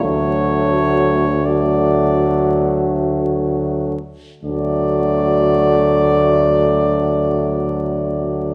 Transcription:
X:1
M:3/4
L:1/8
Q:1/4=42
K:D
V:1 name="Cornet"
c2 d2 z2 | d6 |]
V:2 name="French horn section"
F2 F3 z | F6 |]
V:3 name="Euphonium"
A,2 A,3 z | A,6 |]
V:4 name="Trombone" clef=bass
F,2 F,3 z | F,6 |]
V:5 name="Tuba" clef=bass
D,,4- D,, z | D,,6 |]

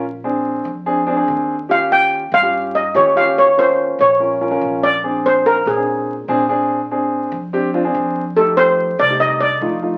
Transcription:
X:1
M:4/4
L:1/16
Q:1/4=144
K:Bbmix
V:1 name="Steel pan"
z16 | f2 g4 f4 e2 _d2 f2 | _d2 c4 d8 =d2- | d2 c2 B2 A6 z4 |
z16 | =A2 c4 d2 e2 d6 |]
V:2 name="Grand piano"
z2 [CDA]4 z2 [CDA] z [CDA] [CDA]3 z2 | [_DFG]4- [DFG] z2 [DFG]3 z2 [DFG] z [DFG]2- | [_DFG] z [DFB]4 z2 [DFB] z [DFB] [DFB]3 z2 | [CDA]4- [CDA] z2 [CDA]3 z2 [CDA] z [CDA]2- |
[CDA] z [CDA]4 z2 [CDG] z [CDF] [CDA]3 z2 | [=A,EG]4- [A,EG] z2 [A,EG]3 z2 [A,EF] z [A,EF]2 |]
V:3 name="Upright bass" clef=bass
B,,,6 F,,6 E,,4- | E,,6 G,,6 E,,4- | E,,6 B,,,6 B,,,4- | B,,,6 B,,6 B,,4- |
B,,6 F,,6 F,,4- | F,,6 C,,6 F,,4 |]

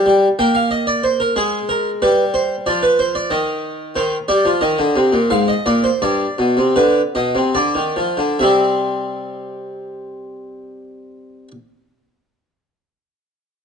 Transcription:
X:1
M:3/4
L:1/16
Q:1/4=82
K:Gphr
V:1 name="Harpsichord"
z2 g f e d c B A2 B2 | =B2 c2 d B c d e4 | c2 d2 e4 f e d c | d4 =B2 e2 d4 |
[G,C=e]12- | [G,C=e]12 |]
V:2 name="Harpsichord" clef=bass
G,2 B,6 A,4 | G,4 F,4 E,4 | E,2 G, F, E, D, C, B,, A,,2 B,,2 | G,,2 =B,, C, D,2 B,, C, D, E, F, D, |
C,12- | C,12 |]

